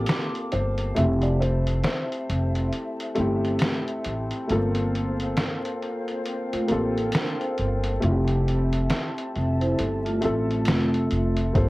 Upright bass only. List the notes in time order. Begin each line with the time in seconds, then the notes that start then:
0.53 G1
0.97 F1
2.30 F1
3.18 G1
4.06 A1
4.50 G1
6.53 muted upright bass stroke
6.71 A1
7.59 G1
8.03 F1
9.36 F1
9.80 G1
10.24 A1
10.68 F1
11.12 F1
11.56 G1